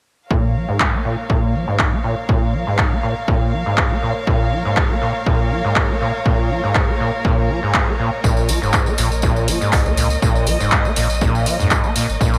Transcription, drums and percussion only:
0.31 kick loud
0.80 kick medium
0.80 clap loud
1.30 kick loud
1.79 kick loud
1.79 clap loud
2.29 kick loud
2.78 kick loud
2.78 clap loud
3.28 kick loud
3.78 kick loud
3.78 clap loud
4.27 kick loud
4.77 kick loud
4.77 clap loud
5.26 kick loud
5.76 kick loud
5.76 clap loud
6.26 kick loud
6.75 kick loud
6.75 clap loud
7.25 kick loud
7.74 kick loud
7.74 clap loud
8.24 kick loud
8.24 tambourine soft
8.37 tambourine soft
8.49 open hi-hat medium
8.49 tambourine medium
8.63 tambourine soft
8.73 kick loud
8.73 clap loud
8.73 tambourine soft
8.86 tambourine soft
8.98 open hi-hat loud
8.98 tambourine medium
9.12 tambourine soft
9.22 kick loud
9.22 tambourine medium
9.36 tambourine soft
9.48 open hi-hat loud
9.48 tambourine medium
9.62 tambourine soft
9.73 kick loud
9.73 clap loud
9.73 open hi-hat medium
9.73 tambourine soft
9.86 tambourine soft
9.97 open hi-hat loud
9.97 tambourine medium
10.10 tambourine soft
10.22 kick loud
10.22 tambourine medium
10.35 tambourine soft
10.47 open hi-hat medium
10.47 tambourine medium
10.60 tambourine soft
10.71 kick loud
10.71 clap loud
10.71 tambourine soft
10.85 tambourine soft
10.96 open hi-hat loud
10.96 tambourine medium
11.10 tambourine soft
11.21 kick loud
11.21 tambourine soft
11.35 tambourine soft
11.46 open hi-hat loud
11.46 tambourine medium
11.60 tambourine soft
11.71 kick medium
11.71 clap loud
11.71 tambourine soft
11.84 tambourine soft
11.96 open hi-hat loud
11.96 tambourine medium
12.10 tambourine soft
12.21 kick loud
12.21 tambourine soft
12.34 tambourine soft

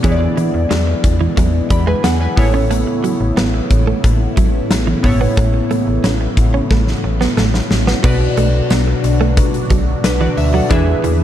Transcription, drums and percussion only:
0.04 kick loud
0.04 closed hi-hat medium
0.04 cowbell medium
0.38 closed hi-hat medium
0.71 snare loud
0.71 closed hi-hat medium
0.71 cowbell medium
1.04 kick medium
1.04 closed hi-hat medium
1.37 kick medium
1.37 closed hi-hat medium
1.37 cowbell medium
1.70 kick medium
1.70 closed hi-hat medium
2.04 snare loud
2.04 closed hi-hat loud
2.04 cowbell medium
2.37 kick loud
2.37 open hi-hat medium
2.71 closed hi-hat medium
2.71 cowbell medium
3.04 closed hi-hat medium
3.37 snare loud
3.37 closed hi-hat medium
3.37 cowbell medium
3.71 kick medium
3.71 closed hi-hat medium
4.04 kick medium
4.04 closed hi-hat medium
4.04 cowbell medium
4.37 kick medium
4.37 closed hi-hat medium
4.71 snare loud
4.71 closed hi-hat loud
4.71 cowbell medium
5.04 kick medium
5.04 open hi-hat medium
5.37 kick loud
5.37 closed hi-hat medium
5.37 cowbell medium
5.71 closed hi-hat medium
6.04 snare loud
6.04 closed hi-hat medium
6.04 cowbell medium
6.37 kick medium
6.37 closed hi-hat medium
6.71 kick medium
6.71 snare medium
6.71 cowbell medium
6.87 snare soft
7.21 snare medium
7.37 snare medium
7.37 cowbell medium
7.54 snare medium
7.71 snare medium
7.87 snare medium
8.04 kick loud
8.04 crash loud
8.04 cowbell medium
8.37 closed hi-hat medium
8.70 snare loud
8.70 closed hi-hat medium
8.70 tambourine medium
8.70 cowbell medium
9.04 closed hi-hat medium
9.37 kick medium
9.37 closed hi-hat medium
9.37 cowbell medium
9.54 closed hi-hat medium
9.70 kick medium
9.70 closed hi-hat medium
10.04 snare loud
10.04 closed hi-hat loud
10.04 tambourine medium
10.04 cowbell medium
10.37 open hi-hat medium
10.71 kick loud
10.71 closed hi-hat medium
10.71 cowbell medium
11.04 closed hi-hat medium

